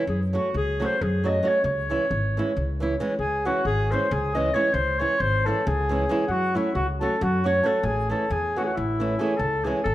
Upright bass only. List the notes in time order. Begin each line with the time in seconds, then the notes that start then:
0.07 F#2
0.54 C#2
1.01 F#2
1.64 C#2
2.11 G#1
2.56 C#2
3.19 C#2
3.65 G#1
4.11 C#2
4.74 C#2
5.20 G#1
5.67 C#2
6.28 F#2
6.75 C#2
7.21 F#2
7.83 A1
8.30 E2
8.77 A1
9.39 C#2
9.85 G#1